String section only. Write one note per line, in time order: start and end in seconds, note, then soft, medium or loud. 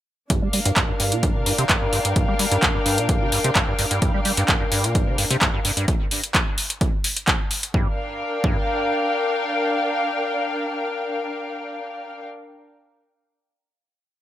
0.30 5.88 D4 medium
0.47 5.88 A#4 medium
0.47 5.88 F5 medium
1.39 5.88 G5 medium
7.74 12.22 D4 medium
7.82 12.22 A#4 medium
7.89 12.22 F5 medium
7.95 12.22 G5 medium